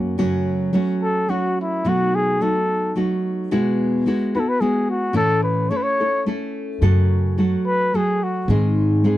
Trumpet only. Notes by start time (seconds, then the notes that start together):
1.03 A4
1.30 F#4
1.62 E4
1.89 F#4
2.15 G#4
2.42 A4
4.36 B4
4.40 A4
4.49 B4
4.61 G#4
4.91 F#4
5.16 A4
5.43 B4
5.70 C#5
5.77 B4
5.83 C#5
7.67 B4
7.96 G#4
8.23 F#4